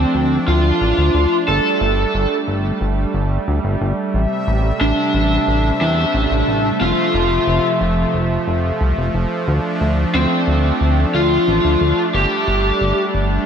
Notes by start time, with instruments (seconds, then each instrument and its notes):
Already playing: analog synth pad F3 A3 D4, lead electric guitar C4
0.15 analog synth bass D2
0.48 analog synth bass D2, lead electric guitar F4
0.81 analog synth bass A1
0.98 analog synth bass D2
1.14 analog synth bass D2
1.48 analog synth bass G1, analog synth pad G3 A3, lead electric guitar A4
1.81 analog synth bass G1
2.15 analog synth bass G1
2.48 analog synth bass G1
2.81 analog synth bass G1
3.14 analog synth bass G1
3.48 analog synth bass D2
3.64 analog synth bass G1
3.81 analog synth bass G1
4.14 analog synth bass A1, analog synth pad C3 E5
4.48 analog synth bass A1
4.81 analog synth bass A1, lead electric guitar D4
5.14 analog synth bass A1
5.47 analog synth bass A1
5.81 analog synth bass E2, lead electric guitar D4
6.14 analog synth bass A1
6.31 analog synth bass A1
6.48 analog synth bass A1
6.81 analog synth bass F1, analog synth pad C3 F3, lead electric guitar F4
7.14 analog synth bass F1
7.48 analog synth bass F1
7.81 analog synth bass F1
8.14 analog synth bass F1
8.48 analog synth bass F1
8.81 analog synth bass C2
8.98 analog synth bass F1
9.14 analog synth bass F1
9.48 analog synth bass D2, analog synth pad D4
9.81 analog synth bass D2
10.14 analog synth bass D2, lead electric guitar C4
10.48 analog synth bass D2
10.81 analog synth bass D2
11.14 analog synth bass D2, lead electric guitar F4
11.48 analog synth bass A1
11.64 analog synth bass D2
11.81 analog synth bass D2
12.14 analog synth bass G1, analog synth pad G3, lead electric guitar G4
12.48 analog synth bass G1
12.81 analog synth bass G1
13.15 analog synth bass G1